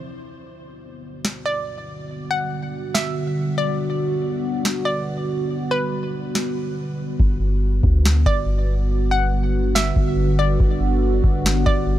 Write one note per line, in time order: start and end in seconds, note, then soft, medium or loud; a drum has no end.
0.00 0.35 D3 medium
0.00 0.35 F3 medium
0.00 0.35 C4 medium
0.00 0.35 E4 medium
0.00 0.35 C5 medium
0.39 7.16 D3 medium
0.39 7.16 G3 medium
0.39 7.16 B3 medium
0.39 7.16 F#4 medium
1.25 snare loud
1.46 2.05 D5 medium
2.31 2.90 F#5 medium
2.95 3.54 E5 medium
2.95 snare loud
3.58 3.78 D5 medium
4.65 snare loud
4.85 5.45 D5 medium
5.71 7.16 B4 medium
6.35 snare loud
7.20 7.81 G1 loud
7.20 11.99 D3 medium
7.20 11.99 G3 medium
7.20 11.99 B3 medium
7.20 11.99 F#4 medium
7.20 kick loud
7.83 8.24 D2 loud
7.83 kick medium
8.05 snare loud
8.26 9.92 G1 loud
8.26 8.86 D5 medium
8.26 kick medium
9.11 9.71 F#5 medium
9.75 10.35 E5 medium
9.75 snare loud
9.96 10.58 G1 loud
9.96 kick medium
10.39 10.59 D5 medium
10.60 11.21 G1 loud
10.60 kick loud
11.24 11.65 G1 loud
11.24 kick medium
11.46 snare loud
11.66 11.99 G1 loud
11.66 11.99 D5 medium
11.66 kick medium